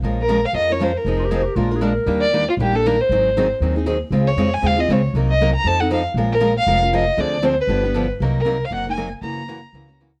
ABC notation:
X:1
M:4/4
L:1/16
Q:"Swing" 1/4=235
K:Bbm
V:1 name="Violin"
z2 B4 f2 e2 d2 c2 B2- | B6 z8 z2 | z2 =d4 F2 =G2 =A2 B2 c2- | c6 z8 z2 |
z2 d4 a2 f2 e2 d2 z2 | z2 e4 b2 =a2 g2 f2 z2 | z2 B4 f4 z2 e4 | =d4 c2 _c8 z2 |
z2 B4 f2 g2 a4 z2 | b12 z4 |]
V:2 name="Clarinet"
z16 | z2 F =G A3/2 _G/2 =G2 F3 A B4- | B4 z12 | z16 |
z16 | z16 | z16 | z16 |
z16 | z16 |]
V:3 name="Steel-string acoustic guitar"
[F,A,DFB]2 z2 [F,A,DFB]2 z2 [F,A,DFB]2 [DFB]2 [F,A,DFB]2 z2 | [F,CEA]2 z2 [F,CEA]2 z2 [F,A,=DFB]2 [DFB]2 [F,A,DFB]2 z2 | [E,=G,B,=D=G]2 z2 [E,G,B,DG]2 z2 [E,G,B,DG]2 [B,DG]2 [E,G,B,DG]2 z2 | [E,G,CEA]2 z2 [E,G,CEA]2 z2 [E,G,CEA]2 [CEA]2 [E,G,CEA]2 z2 |
[D,A,CFA]2 z2 [D,A,CFA]2 z2 [D,A,CFA]2 [CFA]2 [D,A,CFA]2 z2 | [C,G,B,EB]2 z2 [C,G,B,EB]2 z2 [F,CE=A]2 [CEA]2 [F,CEA]2 z2 | [F,A,DFB]2 z2 [F,A,DFB]2 z2 [F,A,DFB]2 [DFB]2 [F,A,DFB]2 z2 | [=D,F,C=DA]2 z2 [D,F,CDA]2 z2 [D,F,=B,D=G]2 [B,DG]2 [D,F,B,DG]2 z2 |
[C,G,B,EB]2 z2 [C,G,B,EB]2 z2 [C,G,B,EB]2 [B,EB]2 [C,G,B,EB]2 z2 | [D,_F,B,DG]2 z2 [D,F,B,DG]2 z2 [D,F,B,DG]2 [B,DG]2 [D,F,B,DG]2 z2 |]
V:4 name="Upright bass" clef=bass
B,,,8 F,,8 | F,,,8 B,,,8 | E,,8 B,,,8 | A,,,8 E,,8 |
D,,4 F,,4 E,,4 D,,4 | C,,8 F,,8 | B,,,8 F,,,8 | =D,,8 =G,,,8 |
C,,8 G,,,8 | G,,,8 D,,8 |]